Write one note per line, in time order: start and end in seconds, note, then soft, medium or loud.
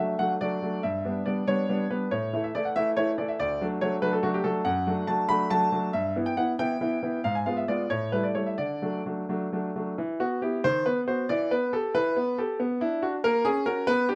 0.00 0.13 F#3 soft
0.00 0.13 A3 soft
0.00 0.14 D4 soft
0.00 0.19 E5 medium
0.19 0.35 F#3 soft
0.19 0.35 A3 soft
0.19 0.35 D4 soft
0.19 0.32 F#5 medium
0.41 0.56 F#3 soft
0.41 0.57 A3 soft
0.41 0.57 D4 soft
0.41 0.83 D5 medium
0.62 0.78 F#3 soft
0.62 0.78 A3 soft
0.62 0.78 D4 soft
0.83 1.04 G2 soft
0.83 1.26 E5 medium
1.05 1.20 G3 soft
1.05 1.21 B3 soft
1.05 1.21 D4 soft
1.26 1.42 G3 soft
1.26 1.42 B3 soft
1.26 1.42 D4 soft
1.26 1.45 D5 medium
1.48 1.63 G3 soft
1.48 1.63 B3 soft
1.48 1.64 D4 soft
1.48 1.90 C#5 medium
1.69 1.84 G3 soft
1.69 1.85 B3 soft
1.69 1.85 D4 soft
1.91 2.06 G3 soft
1.91 2.06 B3 soft
1.91 2.06 D4 soft
1.91 2.12 B4 medium
2.11 2.32 A2 soft
2.11 2.44 C#5 medium
2.33 2.49 E3 soft
2.33 2.49 A3 soft
2.33 2.49 E4 soft
2.44 2.54 E5 medium
2.55 2.70 E3 soft
2.55 2.70 A3 soft
2.55 2.71 E4 soft
2.55 2.65 D5 medium
2.65 2.76 F#5 soft
2.76 2.91 E3 soft
2.76 2.92 A3 soft
2.76 2.92 E4 soft
2.76 2.88 E5 medium
2.97 3.12 E3 soft
2.97 3.13 A3 soft
2.97 3.13 E4 soft
2.97 3.10 C#5 medium
3.18 3.34 E3 soft
3.18 3.34 A3 soft
3.18 3.34 E4 soft
3.18 3.29 D5 medium
3.28 3.39 E5 soft
3.40 3.60 D2 soft
3.40 3.65 D5 medium
3.61 3.76 F#3 soft
3.61 3.76 A3 soft
3.61 3.77 D4 soft
3.81 3.97 F#3 soft
3.81 3.97 A3 soft
3.81 3.97 D4 soft
3.81 3.94 C#5 medium
4.02 4.17 F#3 soft
4.02 4.18 A3 soft
4.02 4.18 D4 soft
4.02 4.13 B4 medium
4.12 4.23 A4 medium
4.23 4.38 F#3 soft
4.23 4.39 A3 soft
4.23 4.39 D4 soft
4.23 4.34 F#4 medium
4.34 4.45 G4 medium
4.44 4.60 F#3 soft
4.44 4.60 A3 soft
4.44 4.60 D4 soft
4.44 4.63 A4 medium
4.65 4.86 F#2 medium
4.65 5.08 F#5 medium
4.87 5.02 F#3 soft
4.87 5.03 A3 soft
4.87 5.03 D4 soft
5.07 5.23 F#3 soft
5.07 5.23 A3 soft
5.07 5.24 D4 soft
5.07 5.29 A5 medium
5.29 5.45 F#3 soft
5.29 5.45 A3 soft
5.29 5.45 D4 soft
5.29 5.50 B5 loud
5.50 5.66 F#3 soft
5.50 5.66 A3 soft
5.50 5.67 D4 soft
5.50 5.90 A5 medium
5.72 5.88 F#3 soft
5.72 5.88 A3 soft
5.72 5.88 D4 soft
5.93 6.15 G2 medium
5.93 6.13 E5 medium
6.16 6.32 E3 soft
6.16 6.32 B3 soft
6.16 6.32 E4 soft
6.26 6.37 G5 medium
6.37 6.53 E3 soft
6.37 6.53 B3 soft
6.37 6.53 E4 soft
6.37 6.50 F#5 medium
6.59 6.75 E3 soft
6.59 6.75 B3 soft
6.59 6.75 E4 soft
6.59 7.20 G5 medium
6.81 6.96 E3 soft
6.81 6.97 B3 soft
6.81 6.97 E4 soft
7.03 7.18 E3 soft
7.03 7.18 B3 soft
7.03 7.19 E4 soft
7.24 7.46 G#2 soft
7.24 7.35 F5 medium
7.35 7.46 G#5 medium
7.46 7.62 G#3 soft
7.46 7.62 B3 soft
7.46 7.63 F4 soft
7.46 7.57 F5 medium
7.57 7.68 E5 medium
7.68 7.84 G#3 soft
7.68 7.85 B3 soft
7.68 7.85 F4 soft
7.68 7.88 D5 medium
7.90 8.12 A2 soft
7.90 8.10 C#5 medium
8.12 8.29 G3 soft
8.12 8.29 A3 soft
8.12 8.29 E4 soft
8.12 8.24 B4 medium
8.23 8.35 D5 soft
8.35 8.52 G3 soft
8.35 8.52 A3 soft
8.35 8.52 E4 soft
8.35 8.47 C#5 medium
8.46 8.58 E5 soft
8.58 8.81 D3 soft
8.58 9.00 D5 medium
8.82 8.99 F#3 soft
8.82 8.99 A3 soft
8.82 9.00 D4 soft
9.06 9.22 F#3 soft
9.06 9.23 A3 soft
9.06 9.23 D4 soft
9.29 9.46 F#3 soft
9.29 9.46 A3 soft
9.29 9.46 D4 soft
9.52 9.69 F#3 soft
9.52 9.69 A3 soft
9.52 9.70 D4 soft
9.76 9.92 F#3 soft
9.76 9.92 A3 soft
9.76 9.92 D4 soft
9.98 10.20 E3 medium
10.20 10.40 B3 soft
10.20 10.40 F#4 medium
10.42 10.58 B3 soft
10.42 10.58 E4 soft
10.42 10.62 G4 soft
10.64 10.86 D#3 soft
10.64 10.86 C5 loud
10.86 11.06 B3 soft
10.86 10.99 B4 medium
11.08 11.23 B3 soft
11.08 11.24 F#4 soft
11.08 11.27 C5 medium
11.29 11.51 E3 medium
11.29 11.51 D5 medium
11.51 11.74 B3 soft
11.51 11.73 B4 medium
11.73 11.96 G4 soft
11.73 11.95 A4 medium
11.95 12.16 E3 soft
11.95 12.38 B4 medium
12.16 12.39 B3 soft
12.38 12.60 G4 soft
12.38 12.58 A4 medium
12.60 12.80 B3 medium
12.81 13.01 D4 soft
12.81 13.02 E4 medium
13.03 13.18 D4 soft
13.03 13.15 F#4 medium
13.24 13.45 A#3 medium
13.24 13.45 A#4 loud
13.45 13.65 C#4 medium
13.45 13.64 G#4 medium
13.66 13.82 C#4 soft
13.66 13.82 F#4 soft
13.66 13.87 A#4 medium
13.87 14.08 B3 medium
13.87 14.06 B4 loud
14.09 14.15 D4 soft
14.09 14.15 G4 medium